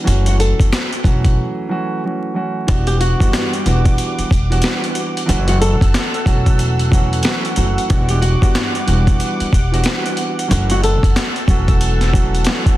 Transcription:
0.03 F#1 E3 F#3 A3 C#4 F#4
0.07 closed hi-hat
0.26 F#4, closed hi-hat
0.40 A4, closed hi-hat
0.60 F#1, kick, closed hi-hat
0.73 finger snap, snare, closed hi-hat
0.93 closed hi-hat
1.04 E1 E3 F#3 A3 C#4 F#4, kick, closed hi-hat
1.25 kick, closed hi-hat
1.69 E3 F#3 A3 C#4 F#4
2.04 E3 F#3 A3 C#4 F#4
2.34 E3 F#3 A3 C#4 F#4
2.67 E1 E3 G3 B3 D4 F#4 F#5 D6, kick, closed hi-hat
2.87 G4, closed hi-hat
3.00 F#4, closed hi-hat
3.19 G1 E3 G3 B3 D4 F#4, kick, closed hi-hat
3.33 finger snap, snare, closed hi-hat
3.53 closed hi-hat
3.65 E1 E3 G3 B3 D4 F#4, closed hi-hat
3.85 kick, closed hi-hat
3.98 closed hi-hat
4.18 muted upright bass stroke, closed hi-hat
4.31 E1, kick, closed hi-hat
4.50 E3 G3 B3 D4 F#4, closed hi-hat
4.62 finger snap, snare, closed hi-hat
4.84 closed hi-hat
4.95 closed hi-hat
5.17 closed hi-hat
5.25 F#1 E3 F#3 A3 C#4 F#4, closed hi-hat
5.30 A4 E6
5.48 F#4, closed hi-hat
5.61 A4, closed hi-hat
5.81 F#1, kick, closed hi-hat
5.94 finger snap, snare, closed hi-hat
6.14 closed hi-hat
6.25 E1 E3 F#3 A3 C#4 F#4, kick, closed hi-hat
6.46 kick, closed hi-hat
6.59 closed hi-hat
6.79 closed hi-hat
6.90 E3 F#3 A3 C#4 F#4, kick, closed hi-hat
7.13 closed hi-hat
7.23 E3 F#3 A3, finger snap, snare, closed hi-hat
7.27 C#4 F#4
7.45 closed hi-hat
7.56 F#1 E3 F#3 A3 C#4 F#4, closed hi-hat
7.78 closed hi-hat
7.88 E1 E3 G3 B3 D4 F#4 D6, kick, closed hi-hat
8.09 G4, closed hi-hat
8.22 F#4, closed hi-hat
8.41 G1 E3 G3 B3 D4 F#4, kick, closed hi-hat
8.55 finger snap, snare, closed hi-hat
8.75 closed hi-hat
8.87 E1 E3 G3 B3 D4 F#4, closed hi-hat
9.07 kick, closed hi-hat
9.20 closed hi-hat
9.40 muted upright bass stroke, closed hi-hat
9.53 E1, kick, closed hi-hat
9.71 E3 G3 B3 D4 F#4, closed hi-hat
9.84 finger snap, snare, closed hi-hat
10.06 closed hi-hat
10.17 closed hi-hat
10.39 closed hi-hat
10.47 F#1 E3 F#3 A3 C#4 F#4, closed hi-hat
10.51 A4 E6
10.70 F#4, closed hi-hat
10.84 A4, closed hi-hat
11.03 F#1, kick, closed hi-hat
11.16 finger snap, snare, closed hi-hat
11.36 closed hi-hat
11.47 E1 E3 F#3 A3 C#4 F#4, kick, closed hi-hat
11.68 kick, closed hi-hat
11.81 closed hi-hat
12.01 snare, closed hi-hat
12.12 E3 F#3 A3 C#4 F#4, kick, closed hi-hat
12.35 closed hi-hat
12.45 E3 F#3 A3, finger snap, snare, closed hi-hat
12.49 C#4 F#4
12.66 kick, closed hi-hat

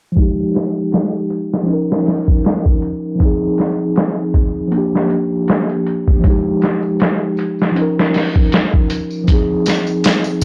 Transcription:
0.12 F3 G#3
0.17 D#4, kick, closed hi-hat
0.22 G4
0.55 snare, closed hi-hat
0.92 snare, closed hi-hat
1.30 closed hi-hat
1.54 snare
1.63 F3 C#4
1.68 D#4, closed hi-hat
1.73 A#4
1.92 snare
2.06 snare, open hi-hat
2.28 kick
2.45 snare, closed hi-hat
2.66 kick
2.82 closed hi-hat
3.16 F3 C4
3.20 D#4, kick, closed hi-hat
3.25 G#4
3.58 snare, closed hi-hat
3.96 snare, closed hi-hat
4.34 kick, closed hi-hat
4.68 F3 A#3
4.72 D4, closed hi-hat
4.78 G4
4.95 snare
5.10 closed hi-hat
5.48 snare, closed hi-hat
5.69 closed hi-hat
5.87 closed hi-hat
6.08 kick
6.20 F3 G#3
6.24 D#4, kick, closed hi-hat, tambourine
6.30 G4
6.61 snare, closed hi-hat, tambourine
6.82 tambourine
6.99 snare, closed hi-hat, tambourine
7.37 closed hi-hat, tambourine
7.59 snare, tambourine
7.71 F3 C#4
7.76 D#4, closed hi-hat, tambourine
7.82 A#4
7.99 snare
8.14 snare, open hi-hat, tambourine
8.35 kick, tambourine
8.52 snare, closed hi-hat, tambourine
8.74 kick
8.90 closed hi-hat, tambourine
9.10 tambourine
9.24 F3 C4, tambourine
9.28 D#4, kick, closed hi-hat
9.33 G#4
9.66 snare, closed hi-hat, tambourine
9.87 tambourine
10.04 snare, closed hi-hat, tambourine
10.24 tambourine

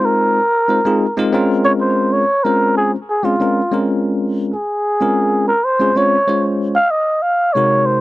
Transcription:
Already playing: G#3 C4 D#4 F4 C5
0.05 A#4
0.68 G#3 C4 D#4 F4 C5
0.85 G#3 C4 D#4 F4 G#4
1.17 G#3 C4 D#4 F4 A#4
1.33 G#3 C4 C#4 F4 A#4
1.65 C#5
1.81 C5
2.13 C#5
2.44 G#3 C4 C#4 F4 A#4 C5
2.77 G#4
3.10 G#4
3.23 G#3 C4 C#4 F4 G#4
3.40 G#3 C4 C#4 F4 A#4
3.72 G#3 C4 C#4 F4 A#4
4.54 G#4
5.00 G#3 C4 C#4 F4 A#4
5.48 A#4
5.65 C5
5.80 G#3 C4 C#4 F4 G#4
5.96 G#3 C4 C#4 F4 C5 C#5
6.27 G#3 C#4 F4 C5 C#5
6.75 F5
6.91 D#5
7.22 F5
7.53 C3 G#3 D#4 C#5
7.57 F#4 A#4
7.86 C5

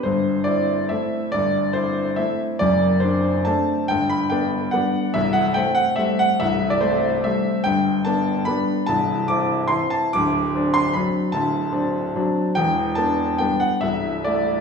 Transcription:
0.03 G1 G2 C5
0.44 C4 E4 D5
0.89 A3 C4 E4 E5
1.32 G1 G2 D5
1.73 C4 E4 C5
2.16 A3 C4 E4 E5
2.59 F#1 F#2 D5
3.00 C4 D4 C5
3.45 A3 C4 D4 A5
3.88 G1 G2 G5
4.10 B5
4.30 B3 D4 G5
4.71 G3 B3 D4 F#5
5.14 C1 C2 E5
5.33 F#5
5.54 A3 C4 G5
5.75 F#5
5.96 G3 A3 C4 E5
6.19 F#5
6.40 C1 C2 E5
6.70 D5
6.81 A3 C4 C5
7.24 G3 A3 C4 E5
7.64 G1 G2 G5
8.05 B3 D4 A5
8.45 G3 B3 D4 B5
8.86 C1 C2 A5
9.28 C4 E4 D6
9.68 E3 C4 E4 C6
9.90 A5
10.13 D1 D2 D6
10.55 C4 D4
10.74 C6
10.93 F#3 C4 D4 B5
11.32 D1 D2 A5
11.73 C4 D4
12.15 F#3 C4 D4
12.55 E1 E2 G5
12.95 B3 D4 A5
13.38 G3 B3 D4 G5
13.60 F#5
13.81 C1 C2 E5
14.24 A3 E4 D5

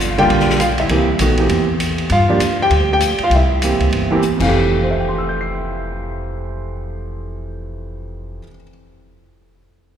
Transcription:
Already playing: G1 F4 F5
0.00 hi-hat pedal
0.18 D3 G3 A#3 F4 G4 G5, ride
0.30 A#1, ride
0.40 snare
0.50 snare
0.60 F4 F5, hi-hat pedal, ride
0.78 E4 E5, ride
0.89 C2 E3 A#3 C4 G4, ride
1.19 A#1 D#3 A3 B3 F#4, hi-hat pedal, ride
1.38 E3 A#3 C4 G4, ride
1.49 E2, ride
1.80 hi-hat pedal, ride
1.98 ride
2.10 G2 F4 F5, ride
2.29 F3 A#3 D4 G4
2.40 D2, hi-hat pedal, ride
2.62 G4 G5
2.70 D2, ride
2.93 G4 G5
3.00 hi-hat pedal, ride
3.18 muted upright bass stroke, ride
3.23 F4 F5
3.30 C2, ride
3.35 E4 E5
3.62 E3 A#3 C4 G4, hi-hat pedal, ride
3.79 C#2, ride
3.91 G1, ride
4.11 E3 A#3 C4 G4
4.22 hi-hat pedal
4.36 F1 F2, kick
4.40 E3 F5, crash
4.44 A3 G4
4.83 C5
4.91 E5
4.99 G5
5.08 C6
5.18 E6
5.29 G6
5.41 C7

